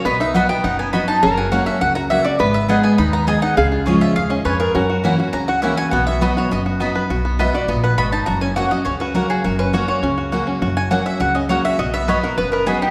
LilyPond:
<<
  \new Staff \with { instrumentName = "Mandolin" } { \time 4/4 \key b \major \tempo 4 = 204 dis''8 e''8 fis''8 g''8 fis''8 gis''8 b''8 a''8 | ais''8 gis''8 fis''8 e''8 fis''8 ais''8 e''8 d''8 | dis''8 e''8 fis''8 gis''8 b''8 ais''8 gis''8 fis''8 | eis''8 r4 e''8 eis''8 dis''8 cis''8 ais'8~ |
ais'4 r4 ais''8 fis''8 e''8 gis''8 | fis''8 e''8 dis''8 cis''8 dis''8 r4. | r4 e''8 d''8 dis''8 fis''8 b''8 a''8 | ais''8 gis''8 fis''8 dis''8 cis''8 b'8 ais'8 gis'8 |
ais'8 b'8 cis''8 cis''4. r4 | r8 gis''8 fis''8 e''8 fis''8 dis''8 cis''8 e''8 | dis''8 e''8 cis''8 ais'8 b'8 ais'8 gis'8 g'8 | }
  \new Staff \with { instrumentName = "Mandolin" } { \time 4/4 \key b \major r4 <b fis' dis'' b''>8 r4. <b fis' dis'' b''>8 r8 | r4 <ais fis' cis'' fis''>8 r4. <ais fis' cis'' fis''>8 r8 | r4 <b gis' dis'' gis''>8 r4. <b gis' dis'' gis''>8 r8 | r4 <cis' eis' cis'' gis''>8 r4. <cis' eis' cis'' gis''>8 r8 |
r4 <ais e' cis'' fis''>8 r4. <ais e' cis'' fis''>8 r8 | r4 <b fis' dis'' b''>8 r4. <b fis' dis'' b''>8 r8 | r4 <b fis' dis'' b''>8 r4. <b fis' dis'' b''>8 r8 | r4 <ais fis' cis'' fis''>8 r4. <ais fis' cis'' fis''>8 r8 |
r4 <ais fis' cis'' fis''>8 r4. <ais fis' cis'' fis''>8 r8 | r4 <ais fis' cis'' fis''>8 r4. <ais fis' cis'' fis''>8 r8 | r4 <b fis' dis'' b''>8 r4. <b fis' dis'' b''>8 r8 | }
  \new Staff \with { instrumentName = "Resonator guitar played with a steel bar" } { \time 4/4 \key b \major b'1 | ais'2.~ ais'8 r8 | b'1 | gis'1 |
fis'1 | fis'2.~ fis'8 r8 | r1 | r1 |
r1 | r1 | r1 | }
  \new Staff \with { instrumentName = "Five-string banjo" } { \time 4/4 \key b \major b8 dis'8 fis'8 b8 dis'8 b8 fis'8 dis'8 | cis'8 fis'8 cis'8 fis'8 fis'8 fis'8 fis'8 fis'8 | b4 gis'8 b8 dis'8 b8 gis'8 dis'8 | gis8 eis'8 gis'8 eis'8 gis'8 cis'8 b'8 gis'8 |
cis'8 fis'8 cis'8 fis'8 cis'8 fis'8 cis'8 fis'8 | b8 fis'8 b8 fis'8 b8 fis'8 b8 b'8 | fis'8 b8 b'8 fis'8 b8 b'8 fis'8 dis'8 | fis'8 cis'8 fis'8 fis'8 cis'8 fis'8 fis'8 fis'8 |
fis'8 cis'8 fis'8 fis'8 cis'8 fis'8 fis'8 cis'8 | fis'8 fis'8 cis'8 fis'8 fis'8 cis'8 fis'8 fis'8 | fis'8 b8 b'8 fis'8 b8 b'8 fis'8 dis'8 | }
  \new Staff \with { instrumentName = "Steel-string acoustic guitar" } { \time 4/4 \key b \major << { r4 <fis b dis' fis'>8 <dis' fis'>8 r4 <fis b dis' fis'>4 | r4 <fis ais cis' fis'>4 r4 <fis ais cis' fis'>8 <cis' fis'>8 | r4 <gis b dis' gis'>4 r4 <gis b dis' gis'>4 | r4 <eis gis cis' eis'>4 r2 |
r4 <e ais cis' fis'>8 <cis' fis'>8 r4 <e ais cis' fis'>4 | r4 <fis b dis' fis'>4 r4 <fis b dis' fis'>8 <dis' fis'>8 | r4 <fis b dis' fis'>8 <dis' fis'>8 r2 | r4 <fis ais cis' fis'>8 <cis' fis'>8 r4 <fis ais cis' fis'>4 |
r4 <fis ais cis' fis'>4 r4 <fis ais cis' fis'>4 | r4 <fis ais cis' fis'>4 r4 <fis ais cis' fis'>4 | r4 <fis b dis' fis'>8 <dis' fis'>8 r4 <fis b dis' fis'>4 | } \\ { b,2 fis,2 | fis,2 cis2 | gis,2 dis2 | cis2 ais,4 gis,4 |
fis,2 cis2 | b,2 fis,2 | b,2 ais,4 gis,4 | fis,2 cis2 |
fis,2 cis2 | fis,2 cis2 | b,2 fis,2 | } >> }
  \new Staff \with { instrumentName = "Upright bass" } { \clef bass \time 4/4 \key b \major b,,2 fis,,2 | fis,,2 cis,2 | gis,,2 dis,2 | cis,4 cis,4 dis,4 eis,4 |
fis,2 cis,2 | b,,2 fis,,2 | b,,2 ais,,4 gis,,4 | fis,,2 cis,2 |
fis,,2 cis,2 | fis,,2 cis,2 | b,,2 fis,,2 | }
>>